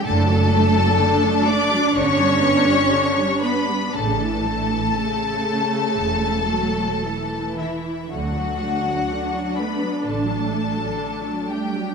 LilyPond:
<<
  \new Staff \with { instrumentName = "Violin section" } { \time 4/4 \key d \major \tempo 4 = 60 a''4. d'''8 cis'''4. b''8 | a''2.~ a''8 e''8 | fis''4. b''8 a''4. g''8 | }
  \new Staff \with { instrumentName = "Violin section" } { \time 4/4 \key d \major a'4. d''8 cis''4. b'8 | a'2.~ a'8 e'8 | fis'4. b'8 a'4. g'8 | }
  \new Staff \with { instrumentName = "Cello section" } { \time 4/4 \key d \major a4. d'8 cis'4. b8 | a2.~ a8 e8 | fis4. b8 a4. g8 | }
  \new Staff \with { instrumentName = "Viola section" } { \clef bass \time 4/4 \key d \major << { d'1~ | d'4 cis4. fis8 e4 | d'1 | } \\ { d16 fis16 a16 fis16 d16 fis16 a16 fis16 d16 g16 b16 g16 d16 g16 b16 g16 | cis16 e16 a16 e16 r2. | d16 fis16 a16 fis16 d16 fis16 a16 fis16 d16 fis16 a16 fis16 d16 fis16 a16 fis16 | } >> }
  \new Staff \with { instrumentName = "Double bass section" } { \clef bass \time 4/4 \key d \major fis,,4 r4 g,,4 r4 | a,,4 r4 e,,4 r4 | d,4 r4 a,,4 r4 | }
>>